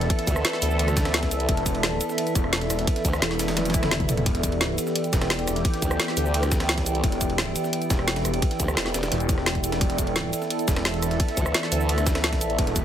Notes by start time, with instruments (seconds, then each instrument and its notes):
Already playing: analog synth pad E3 B3 E4 A4, ambient pad A4 D5 E5
0.01 snare, closed hi-hat
0.10 kick, closed hi-hat, ride
0.19 snare, closed hi-hat
0.27 wobble bass D2, kick, closed hi-hat, ride, cabasa
0.36 cross-stick, cabasa
0.45 snare, closed hi-hat, ride
0.53 snare
0.62 wobble bass D2, open hi-hat, ride, cabasa
0.71 cabasa
0.79 closed hi-hat, ride
0.88 cross-stick, closed hi-hat, cabasa
0.97 kick, snare, closed hi-hat, ride, cabasa
1.05 cross-stick, snare, ride
1.14 snare, closed hi-hat, ride
1.22 wobble bass C#2, kick, snare, closed hi-hat, ride
1.31 closed hi-hat, ride, cabasa
1.40 closed hi-hat
1.49 detuned saw bass E1, kick, closed hi-hat, ride
1.57 snare, closed hi-hat
1.66 kick, closed hi-hat, ride, cabasa
1.75 ride
1.83 snare, closed hi-hat, ride
2.01 closed hi-hat, ride, cabasa
2.09 snare, cabasa
2.18 closed hi-hat, ride
2.27 closed hi-hat, cabasa
2.35 detuned saw bass E1, kick, closed hi-hat, ride, cabasa
2.44 cross-stick
2.53 snare, closed hi-hat, ride
2.61 snare, closed hi-hat
2.70 detuned saw bass E1, cross-stick, snare, closed hi-hat, ride, cabasa
2.79 snare, closed hi-hat
2.87 kick, closed hi-hat, ride
2.96 snare, closed hi-hat
3.05 wobble bass D2, kick, closed hi-hat, ride, cabasa
3.13 cross-stick, snare, cabasa
3.22 detuned saw bass E1, snare, closed hi-hat, ride
3.31 snare, ride
3.39 snare, open hi-hat, ride, cabasa
3.48 snare, ride, cabasa
3.57 snare, closed hi-hat, high tom, ride, swell
3.65 closed hi-hat, high tom, ride, cabasa
3.70 snare, ride
3.74 kick, closed hi-hat, ride, cabasa
3.83 cross-stick, snare, mid tom, ride
3.91 snare, closed hi-hat, mid tom, ride
4.00 kick, closed hi-hat, mid tom
4.09 closed hi-hat, mid tom, ride, cabasa
4.17 closed hi-hat, mid tom
4.26 detuned saw bass E1, analog synth pad G4, kick, closed hi-hat, ride
4.35 snare, closed hi-hat
4.43 kick, closed hi-hat, ride, cabasa
4.52 ride
4.61 snare, closed hi-hat, ride
4.78 closed hi-hat, ride, cabasa
4.83 ambient pad G5, snare, cabasa
4.96 closed hi-hat, ride
5.04 closed hi-hat, cabasa
5.13 detuned saw bass E1, kick, snare, closed hi-hat, ride, cabasa
5.21 cross-stick, snare, ride
5.30 snare, closed hi-hat, ride
5.39 snare, closed hi-hat
5.47 detuned saw bass E1, cross-stick, snare, closed hi-hat, ride, cabasa
5.56 snare, closed hi-hat
5.65 kick, closed hi-hat, ride
5.74 snare, closed hi-hat
5.82 wobble bass D2, kick, closed hi-hat, ride, cabasa
5.91 cross-stick, cabasa
6.00 snare, closed hi-hat, ride
6.08 snare
6.17 wobble bass D2, open hi-hat, ride, cabasa
6.26 cabasa
6.34 closed hi-hat, ride
6.43 cross-stick, closed hi-hat, cabasa
6.52 kick, snare, closed hi-hat, ride, cabasa
6.60 cross-stick, snare, ride
6.69 snare, closed hi-hat, ride
6.77 wobble bass C#2, kick, snare, closed hi-hat, ride
6.86 closed hi-hat, ride, cabasa
6.95 closed hi-hat
7.04 detuned saw bass E1, kick, closed hi-hat, ride
7.12 snare, closed hi-hat
7.21 kick, closed hi-hat, ride, cabasa
7.30 ride
7.38 snare, closed hi-hat, ride
7.56 closed hi-hat, ride, cabasa
7.64 snare, cabasa
7.73 closed hi-hat, ride
7.82 closed hi-hat, cabasa
7.90 detuned saw bass E1, kick, snare, closed hi-hat, ride, cabasa
7.99 cross-stick
8.08 snare, closed hi-hat, ride
8.16 snare, closed hi-hat, ride
8.25 detuned saw bass E1, cross-stick, closed hi-hat, cabasa
8.34 closed hi-hat, ride
8.42 kick, closed hi-hat, ride
8.51 snare, closed hi-hat
8.60 wobble bass D2, kick, closed hi-hat, ride, cabasa
8.68 cross-stick, cabasa
8.77 wobble bass E1, snare, closed hi-hat, ride
8.86 snare
8.94 wobble bass E1, snare, open hi-hat, ride, cabasa
9.03 snare, ride, cabasa
9.12 detuned saw bass E1, snare, closed hi-hat, ride
9.20 closed hi-hat, cabasa
9.29 kick, closed hi-hat, ride, cabasa
9.38 cross-stick, snare
9.46 snare, closed hi-hat, ride
9.55 kick, closed hi-hat
9.64 closed hi-hat, ride, cabasa
9.72 snare, closed hi-hat, ride
9.81 detuned saw bass E1, analog synth pad A4, kick, closed hi-hat, ride
9.90 snare, closed hi-hat
9.98 kick, closed hi-hat, ride, cabasa
10.07 ride
10.16 snare, closed hi-hat, ride
10.33 closed hi-hat, ride, cabasa
10.38 ambient pad E5, snare, cabasa
10.50 closed hi-hat, ride
10.59 closed hi-hat, cabasa
10.68 detuned saw bass E1, kick, snare, closed hi-hat, ride, cabasa
10.76 cross-stick, snare, ride
10.85 snare, closed hi-hat, ride
10.94 snare, closed hi-hat
11.02 detuned saw bass E1, cross-stick, snare, closed hi-hat, ride, cabasa
11.11 snare, closed hi-hat
11.20 kick, closed hi-hat, ride
11.28 snare, closed hi-hat
11.37 wobble bass D2, kick, closed hi-hat, ride, cabasa
11.46 cross-stick, cabasa
11.54 snare, closed hi-hat, ride
11.63 snare
11.72 wobble bass D2, open hi-hat, ride, cabasa
11.80 cabasa
11.89 closed hi-hat, ride
11.98 cross-stick, closed hi-hat, cabasa
12.06 kick, snare, closed hi-hat, ride, cabasa
12.15 cross-stick, snare, ride
12.24 snare, closed hi-hat, ride
12.32 kick, snare, closed hi-hat, ride
12.41 closed hi-hat, ride, cabasa
12.50 closed hi-hat
12.59 detuned saw bass E1, kick, closed hi-hat, ride
12.67 snare, closed hi-hat
12.76 kick, closed hi-hat, ride, cabasa